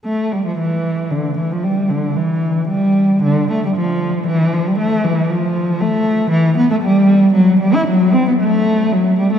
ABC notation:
X:1
M:3/4
L:1/16
Q:1/4=115
K:Ephr
V:1 name="Cello" clef=bass
A,2 G, F, E,4 D,2 E, F, | G,2 D,2 E,4 G,4 | D,2 A, G, F,4 E,2 F, G, | A,2 E,2 F,4 A,4 |
[K:G] E,2 B, A, G,4 F,2 G, E | F,2 C B, A,4 F,2 G, A, |]